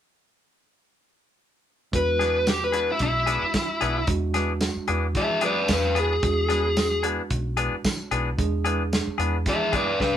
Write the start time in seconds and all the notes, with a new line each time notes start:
1.92 E2 G#3 D4 F#4 B4, kick, closed hi-hat
2.19 E3 B3 D4 G#4, snare, closed hi-hat
2.47 G4, snare, closed hi-hat, tambourine
2.64 B4
2.72 E3 B3 D4 G#4, closed hi-hat
2.92 E4
2.99 B1 E4, kick, closed hi-hat
3.26 E3 B3 D4 G#4, closed hi-hat
3.43 muted fingered electric bass stroke
3.54 E3, kick, snare, closed hi-hat, tambourine
3.81 B1 E3 B3 D4 G#4, closed hi-hat
4.07 E2 G#3 D4 F#4, kick, closed hi-hat
4.34 E3 B3 D4 G#4, snare, closed hi-hat
4.61 snare, closed hi-hat, tambourine
4.76 muted fingered electric bass stroke
4.88 E2 E3 B3 D4 G#4, closed hi-hat
5.15 E3 G#4 E5, kick, closed hi-hat
5.41 E3 B3 D4 G#4 B4, closed hi-hat
5.45 D5
5.68 E2 D4 B4, kick, snare, closed hi-hat, tambourine
5.95 E3 B3 D4 G#4, closed hi-hat
5.99 G#4
6.23 E2 G#3 D4 F#4, kick, closed hi-hat
6.49 E3 B3 D4 G#4, snare, closed hi-hat
6.77 snare, closed hi-hat, tambourine
7.03 E3 B3 D4 G#4, closed hi-hat
7.30 B1, kick, closed hi-hat
7.57 E3 B3 D4 G#4, closed hi-hat
7.85 E3, kick, snare, closed hi-hat, tambourine
8.11 B1 E3 B3 D4 G#4, closed hi-hat
8.38 E2 G#3 D4 G#4, kick, closed hi-hat
8.65 E3 B3 D4 G#4, closed hi-hat
8.93 snare, closed hi-hat, tambourine
9.08 muted fingered electric bass stroke
9.18 E2 E3 B3 D4 G#4, closed hi-hat
9.46 E3 G#4 E5, kick, closed hi-hat
9.73 E3 B3 D4 G#4 B4 D5, kick, closed hi-hat
10.00 C#2 D4 B4, kick, snare